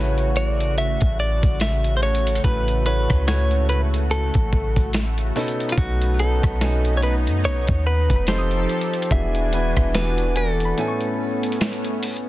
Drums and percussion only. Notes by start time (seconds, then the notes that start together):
0.18 closed hi-hat
0.36 closed hi-hat
0.60 closed hi-hat
0.78 closed hi-hat
1.01 kick, closed hi-hat
1.43 kick, closed hi-hat
1.60 snare, closed hi-hat
1.84 closed hi-hat
2.03 closed hi-hat
2.15 closed hi-hat
2.27 closed hi-hat
2.35 closed hi-hat
2.44 kick, closed hi-hat
2.68 closed hi-hat
2.86 closed hi-hat
3.10 kick, cross-stick, closed hi-hat
3.28 snare, closed hi-hat
3.51 closed hi-hat
3.69 closed hi-hat
3.94 closed hi-hat
4.11 closed hi-hat
4.34 kick, closed hi-hat
4.53 kick
4.76 kick, closed hi-hat
4.93 snare, closed hi-hat
5.18 closed hi-hat
5.36 closed hi-hat, open hi-hat
5.48 closed hi-hat
5.60 closed hi-hat
5.69 closed hi-hat
5.78 kick, closed hi-hat
6.02 closed hi-hat
6.19 closed hi-hat
6.43 kick, cross-stick, closed hi-hat
6.61 snare, closed hi-hat
6.85 closed hi-hat
7.03 closed hi-hat
7.27 closed hi-hat
7.44 closed hi-hat
7.67 kick, closed hi-hat
8.10 kick, closed hi-hat
8.27 snare, closed hi-hat
8.51 closed hi-hat
8.69 closed hi-hat
8.81 closed hi-hat
8.93 closed hi-hat
9.02 closed hi-hat
9.11 kick, closed hi-hat
9.35 closed hi-hat
9.53 closed hi-hat
9.77 kick, cross-stick, closed hi-hat
9.95 snare, closed hi-hat
10.18 closed hi-hat
10.36 closed hi-hat
10.60 closed hi-hat
10.78 closed hi-hat
11.01 closed hi-hat
11.43 closed hi-hat
11.52 closed hi-hat
11.61 snare, closed hi-hat
11.73 closed hi-hat
11.84 closed hi-hat
12.03 closed hi-hat, open hi-hat
12.17 closed hi-hat